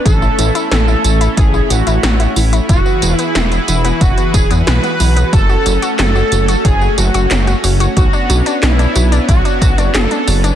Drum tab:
HH |x-xxx-xxx-xxxxox|x-xxxxxxxxxxxxox|x-xxx-xxx-xxxxox|x-xxxxxxxxxxxxox|
TB |xxxxxxxxxxxxxxxx|xxxxxxxxxxxxxxxx|xxxxxxxxxxxxxxxx|xxxxxxxxxxxxxxxx|
CP |----------------|----------------|----x-------x---|----x-------x---|
SD |----o-------o---|----o-------o---|----o-------o---|----o-------o---|
BD |o-------o-------|o-------o-o-----|o-------o-------|o-------o-o-----|